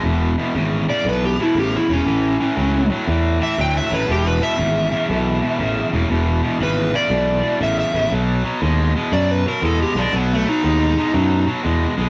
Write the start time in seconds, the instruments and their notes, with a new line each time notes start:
0.03 fingered electric bass E1, overdriven electric guitar E2 B2
0.38 overdriven electric guitar E2 B2
0.55 fingered electric bass G#1, overdriven electric guitar E2 C#3
0.88 overdriven electric guitar E2 C#3, electric slide guitar D5
1.05 fingered electric bass B1, overdriven electric guitar E2 B2
1.09 electric slide guitar B4
1.25 electric slide guitar G4
1.39 overdriven electric guitar E2 B2, electric slide guitar E4
1.55 fingered electric bass A1, overdriven electric guitar E2 C#3
1.59 electric slide guitar G4
1.77 electric slide guitar E4
1.89 fingered electric bass E1, overdriven electric guitar E2 C#3, electric slide guitar C#4
2.06 fingered electric bass A1, overdriven electric guitar A2 E3
2.40 overdriven electric guitar A2 E3
2.57 fingered electric bass C#2, overdriven electric guitar A2 F#3
2.90 overdriven electric guitar A2 F#3
3.07 fingered electric bass E2, overdriven electric guitar A2 E3
3.40 overdriven electric guitar A2 E3, electric slide guitar E5
3.58 fingered electric bass D2, overdriven electric guitar A2 F#3, electric slide guitar G5
3.77 electric slide guitar E5
3.90 fingered electric bass A1, overdriven electric guitar A2 F#3
3.94 electric slide guitar B4
4.06 fingered electric bass E1, overdriven electric guitar E2 B2
4.11 electric slide guitar G4
4.27 electric slide guitar B4
4.40 overdriven electric guitar E2 B2, electric slide guitar E5
4.57 fingered electric bass G#1, overdriven electric guitar E2 C#3
4.91 overdriven electric guitar E2 C#3
5.09 fingered electric bass B1, overdriven electric guitar E2 B2
5.41 overdriven electric guitar E2 B2
5.59 fingered electric bass A1, overdriven electric guitar E2 C#3
5.92 fingered electric bass E1, overdriven electric guitar E2 C#3
6.10 fingered electric bass E1, overdriven electric guitar E2 B2
6.43 overdriven electric guitar E2 B2
6.60 fingered electric bass G#1, overdriven electric guitar E2 C#3, electric slide guitar B4
6.93 overdriven electric guitar E2 C#3, electric slide guitar D5
7.10 fingered electric bass B1, overdriven electric guitar E2 B2
7.42 overdriven electric guitar E2 B2
7.60 fingered electric bass A1, overdriven electric guitar E2 C#3, electric slide guitar E5
7.80 electric slide guitar E5
7.93 fingered electric bass A1, overdriven electric guitar E2 C#3
8.11 fingered electric bass B1, overdriven electric guitar B2 F#3
8.44 overdriven electric guitar B2 F#3
8.62 fingered electric bass D#2, overdriven electric guitar B2 G#3
8.96 overdriven electric guitar B2 G#3
9.12 fingered electric bass F#2, overdriven electric guitar B2 F#3, electric slide guitar D5
9.31 electric slide guitar B4
9.46 overdriven electric guitar B2 F#3, electric slide guitar A#4
9.62 fingered electric bass E2, overdriven electric guitar B2 G#3, electric slide guitar A4
9.82 electric slide guitar G4
9.95 fingered electric bass B1, overdriven electric guitar B2 G#3, electric slide guitar D4
10.13 fingered electric bass B1, overdriven electric guitar B2 F#3, electric slide guitar B3
10.33 electric slide guitar A3
10.46 overdriven electric guitar B2 F#3, electric slide guitar D#4
10.63 fingered electric bass D#2, overdriven electric guitar B2 G#3
10.97 overdriven electric guitar B2 G#3
11.14 fingered electric bass F#2, overdriven electric guitar B2 F#3
11.47 overdriven electric guitar B2 F#3
11.63 fingered electric bass E2, overdriven electric guitar B2 G#3
11.97 fingered electric bass B1, overdriven electric guitar B2 G#3